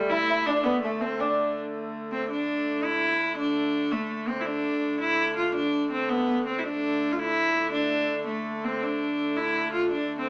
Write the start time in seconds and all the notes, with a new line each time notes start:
Already playing: D3 G3 A3
0.09 E4
0.30 E4
0.46 D4
0.64 B3
0.82 A3
1.01 C4
1.20 D4
2.12 C4
2.29 D3 A3 D4
2.84 E4
3.37 D4
3.92 A3
4.28 C4
4.40 E4
4.46 D4
5.00 E4
5.36 F4
5.55 D4
5.91 C4
6.09 B3
6.46 C4
6.58 E4
6.64 D3 A3 D4
7.12 F4
7.18 E4
7.72 D4
8.27 A3
8.64 C4
8.82 D4
9.36 E4
9.73 F4
9.91 D4
10.18 C4